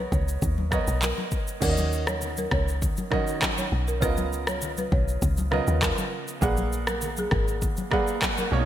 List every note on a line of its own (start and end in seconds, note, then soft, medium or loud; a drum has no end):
0.00 0.71 B3 medium
0.00 0.72 A#4 medium
0.00 0.10 B4 medium
0.00 0.72 C#5 medium
0.00 0.73 D#5 medium
0.12 0.38 C#2 loud
0.12 0.26 C#5 medium
0.12 kick medium
0.12 low conga medium
0.12 shaker medium
0.28 shaker medium
0.42 0.81 D#2 medium
0.42 kick medium
0.42 low conga medium
0.42 shaker medium
0.58 high conga medium
0.71 1.42 B3 medium
0.71 1.42 A#4 medium
0.71 0.86 B4 medium
0.71 1.43 C#5 medium
0.71 1.43 D#5 medium
0.71 kick medium
0.71 cross-stick loud
0.71 high conga medium
0.71 shaker medium
0.87 1.13 B1 medium
0.87 shaker medium
1.02 1.45 A#4 medium
1.02 clap loud
1.02 high conga medium
1.02 shaker medium
1.18 high conga medium
1.31 kick medium
1.31 shaker medium
1.47 shaker medium
1.60 2.48 D#2 loud
1.60 2.55 D#3 medium
1.60 2.55 C#4 medium
1.60 2.56 F#4 medium
1.60 1.76 A#4 loud
1.60 1.69 D5 medium
1.60 kick loud
1.60 crash loud
1.60 shaker medium
1.70 2.59 D#5 medium
1.77 high conga medium
1.77 shaker medium
1.93 shaker soft
2.07 2.20 C#5 medium
2.07 cross-stick loud
2.07 high conga medium
2.07 shaker medium
2.21 low conga medium
2.21 shaker medium
2.37 2.50 A#4 medium
2.37 high conga medium
2.37 shaker medium
2.51 2.91 C#2 medium
2.51 2.66 C#5 medium
2.51 kick loud
2.51 cross-stick loud
2.51 low conga medium
2.68 shaker soft
2.82 kick loud
2.82 low conga medium
2.82 shaker medium
2.97 high conga medium
2.97 shaker medium
3.11 3.82 D#3 medium
3.11 3.82 C#4 medium
3.11 3.83 F#4 medium
3.11 3.26 A#4 medium
3.11 3.83 D#5 medium
3.11 kick medium
3.11 cross-stick loud
3.11 high conga medium
3.27 shaker medium
3.42 kick medium
3.42 cross-stick loud
3.42 clap loud
3.42 high conga medium
3.42 shaker medium
3.58 3.70 C#5 medium
3.58 high conga medium
3.58 shaker medium
3.72 4.04 B1 medium
3.88 4.00 A#4 medium
3.88 shaker soft
4.00 4.88 C#2 loud
4.00 4.95 C#3 medium
4.00 4.95 B3 medium
4.00 4.95 F4 medium
4.00 4.96 A#4 medium
4.00 4.15 B4 loud
4.00 4.96 D#5 medium
4.00 kick loud
4.00 shaker medium
4.17 high conga medium
4.17 shaker medium
4.33 shaker soft
4.47 4.60 C#5 medium
4.47 cross-stick loud
4.47 high conga medium
4.47 shaker medium
4.62 low conga medium
4.62 shaker medium
4.77 4.90 B4 medium
4.77 high conga medium
4.77 shaker medium
4.92 5.18 B1 loud
4.92 5.06 C#5 medium
4.92 kick loud
4.92 low conga medium
5.08 shaker soft
5.22 5.61 C#2 loud
5.22 kick medium
5.22 low conga medium
5.22 shaker medium
5.37 high conga medium
5.37 shaker medium
5.51 6.22 C#3 medium
5.51 6.22 B3 medium
5.51 6.23 F4 medium
5.51 6.23 A#4 medium
5.51 5.66 B4 medium
5.51 6.23 D#5 medium
5.51 cross-stick medium
5.51 high conga medium
5.67 5.93 D#2 medium
5.67 shaker medium
5.82 6.25 A#4 medium
5.82 kick medium
5.82 cross-stick loud
5.82 clap loud
5.82 high conga medium
5.82 shaker medium
5.98 high conga medium
5.98 shaker medium
6.28 shaker soft
6.41 7.28 A#1 loud
6.41 7.35 A#3 medium
6.41 7.35 G#4 medium
6.41 6.56 G#4 loud
6.41 7.36 B4 medium
6.41 7.36 D5 medium
6.41 7.36 F#5 medium
6.41 kick loud
6.41 shaker medium
6.57 high conga medium
6.57 shaker medium
6.73 shaker soft
6.87 7.01 A#4 medium
6.87 cross-stick loud
6.87 high conga medium
6.87 shaker medium
7.01 low conga medium
7.01 shaker medium
7.17 7.31 G#4 medium
7.17 high conga medium
7.17 shaker medium
7.31 7.71 G#1 loud
7.31 7.46 A#4 medium
7.31 kick loud
7.31 cross-stick loud
7.31 low conga medium
7.48 shaker soft
7.62 kick medium
7.62 low conga medium
7.62 shaker medium
7.77 high conga medium
7.77 shaker medium
7.91 8.50 A#3 medium
7.91 8.52 G#4 medium
7.91 8.06 G#4 medium
7.91 8.52 B4 medium
7.91 8.52 D5 medium
7.91 8.53 F#5 medium
7.91 kick medium
7.91 cross-stick loud
7.91 high conga medium
8.07 shaker medium
8.22 kick medium
8.22 cross-stick loud
8.22 clap loud
8.22 high conga medium
8.22 shaker medium
8.38 8.50 A#4 medium
8.38 high conga medium
8.38 shaker medium
8.51 8.65 B1 medium
8.51 8.65 B2 medium
8.51 8.65 A#3 medium
8.51 8.59 C#4 medium
8.51 8.65 C#5 medium
8.59 8.65 D#4 medium